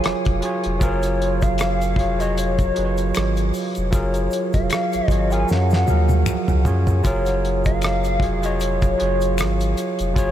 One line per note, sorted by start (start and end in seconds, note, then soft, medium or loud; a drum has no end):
0.00 0.41 F#3 medium
0.00 0.42 F4 medium
0.00 0.44 G#4 medium
0.00 0.31 A#4 medium
0.00 0.45 C#5 medium
0.00 0.39 G#5 loud
0.00 closed hi-hat medium
0.06 0.14 F1 soft
0.06 cross-stick medium
0.25 0.42 F1 medium
0.25 kick medium
0.25 closed hi-hat soft
0.41 0.74 F#3 medium
0.41 0.75 F4 medium
0.41 0.76 G#4 medium
0.41 closed hi-hat medium
0.45 0.76 C#5 medium
0.64 0.81 F1 medium
0.64 closed hi-hat soft
0.79 1.95 F#1 medium
0.79 1.78 F#3 medium
0.79 1.79 F4 medium
0.79 1.79 G#4 medium
0.79 1.44 C#5 medium
0.79 kick loud
0.79 closed hi-hat medium
0.79 shaker medium
0.83 1.80 A#4 loud
1.03 cross-stick soft
1.03 closed hi-hat soft
1.03 shaker soft
1.22 closed hi-hat medium
1.42 2.21 F5 loud
1.42 kick medium
1.42 closed hi-hat soft
1.42 shaker soft
1.58 finger snap medium
1.58 cross-stick loud
1.58 closed hi-hat medium
1.58 shaker medium
1.81 closed hi-hat soft
1.81 shaker soft
1.96 2.72 F1 medium
1.96 2.14 F#3 medium
1.96 2.15 F4 medium
1.96 2.16 G#4 medium
1.96 kick medium
1.96 closed hi-hat medium
2.00 2.17 C#5 medium
2.00 cross-stick soft
2.17 2.65 F#3 medium
2.17 2.66 F4 medium
2.17 2.67 G#4 medium
2.17 2.39 D#5 medium
2.17 closed hi-hat soft
2.17 shaker soft
2.22 2.68 C#5 medium
2.38 3.54 C#5 medium
2.38 closed hi-hat medium
2.38 shaker medium
2.58 kick medium
2.58 closed hi-hat soft
2.58 shaker soft
2.74 3.13 F#1 medium
2.74 3.73 F#3 medium
2.74 3.74 F4 medium
2.74 3.74 G#4 medium
2.74 closed hi-hat medium
2.79 2.84 B4 medium
2.85 3.78 C#5 medium
2.97 closed hi-hat soft
2.97 shaker soft
3.15 3.52 G#1 loud
3.15 finger snap medium
3.15 cross-stick loud
3.15 closed hi-hat medium
3.15 shaker medium
3.37 closed hi-hat soft
3.37 shaker soft
3.54 open hi-hat soft
3.54 shaker soft
3.75 3.93 F1 medium
3.75 closed hi-hat soft
3.75 shaker soft
3.91 4.29 F#1 medium
3.91 4.89 F#3 medium
3.91 4.90 F4 medium
3.91 4.91 G#4 medium
3.91 4.50 C#5 medium
3.91 kick loud
3.91 closed hi-hat medium
3.91 shaker medium
3.95 4.92 A#4 medium
4.14 closed hi-hat soft
4.14 shaker soft
4.31 closed hi-hat medium
4.31 shaker soft
4.53 4.70 F1 medium
4.53 5.08 F5 loud
4.53 kick medium
4.53 closed hi-hat soft
4.53 shaker soft
4.70 finger snap medium
4.70 cross-stick loud
4.70 closed hi-hat medium
4.70 shaker medium
4.93 5.01 G#1 soft
4.93 closed hi-hat soft
4.93 shaker soft
5.08 5.45 G#1 medium
5.08 5.26 F#3 medium
5.08 5.27 F4 medium
5.08 5.28 G#4 medium
5.08 5.33 D#5 loud
5.08 kick medium
5.08 closed hi-hat medium
5.08 shaker soft
5.12 5.29 C#5 medium
5.29 5.77 F#3 medium
5.29 5.78 F4 medium
5.29 5.79 G#4 medium
5.29 5.51 G#5 loud
5.29 closed hi-hat soft
5.29 shaker soft
5.34 5.79 A#4 medium
5.48 5.85 F#2 medium
5.48 6.66 F#5 loud
5.48 snare soft
5.48 shaker medium
5.70 snare medium
5.70 shaker soft
5.86 6.53 F3 medium
5.86 6.52 F#3 medium
5.86 6.53 G#4 medium
5.86 high tom medium
5.86 shaker soft
5.90 6.24 D#2 medium
5.90 6.54 A#4 medium
6.09 high tom medium
6.09 shaker soft
6.26 6.37 C#2 soft
6.26 finger snap medium
6.26 mid tom medium
6.26 shaker medium
6.48 6.65 C#2 medium
6.48 mid tom medium
6.48 shaker soft
6.63 6.97 F#3 medium
6.63 6.98 F4 medium
6.63 6.98 G#4 medium
6.63 floor tom medium
6.63 shaker soft
6.67 7.02 F#2 loud
6.67 6.99 C#5 medium
6.87 floor tom medium
6.87 shaker soft
7.03 8.18 F#1 loud
7.03 8.01 F#3 medium
7.03 8.02 F4 medium
7.03 8.03 G#4 medium
7.03 kick loud
7.03 closed hi-hat medium
7.03 shaker medium
7.07 8.03 A#4 medium
7.07 7.62 C#5 medium
7.26 cross-stick soft
7.26 closed hi-hat soft
7.26 shaker soft
7.45 closed hi-hat soft
7.65 8.46 F5 loud
7.65 kick medium
7.65 closed hi-hat soft
7.65 shaker soft
7.81 finger snap medium
7.81 cross-stick loud
7.81 closed hi-hat medium
7.81 shaker medium
8.04 closed hi-hat soft
8.04 shaker soft
8.19 8.95 F1 medium
8.19 8.38 F#3 medium
8.19 8.39 F4 medium
8.19 8.39 G#4 medium
8.19 kick medium
8.19 closed hi-hat medium
8.24 8.40 C#5 medium
8.24 cross-stick soft
8.41 8.89 F#3 medium
8.41 8.90 F4 medium
8.41 8.91 G#4 medium
8.41 8.61 D#5 medium
8.41 closed hi-hat soft
8.41 shaker soft
8.46 8.91 C#5 medium
8.60 9.74 C#5 medium
8.60 closed hi-hat medium
8.60 shaker medium
8.82 kick medium
8.82 closed hi-hat soft
8.82 shaker soft
8.97 9.96 F#3 medium
8.97 9.97 F4 medium
8.97 9.97 G#4 medium
8.97 closed hi-hat medium
9.01 9.42 F#1 medium
9.01 9.98 C#5 medium
9.21 closed hi-hat soft
9.21 shaker soft
9.38 9.75 G#1 loud
9.38 finger snap medium
9.38 cross-stick medium
9.38 closed hi-hat medium
9.38 shaker medium
9.60 closed hi-hat soft
9.60 shaker soft
9.77 closed hi-hat medium
9.77 shaker soft
9.99 10.15 F1 medium
9.99 closed hi-hat soft
9.99 shaker soft
10.14 10.31 F#1 loud
10.14 10.31 F#3 medium
10.14 10.31 F4 medium
10.14 10.31 G#4 medium
10.14 10.31 C#5 medium
10.14 kick loud
10.14 closed hi-hat medium
10.14 shaker medium
10.18 10.31 C#5 medium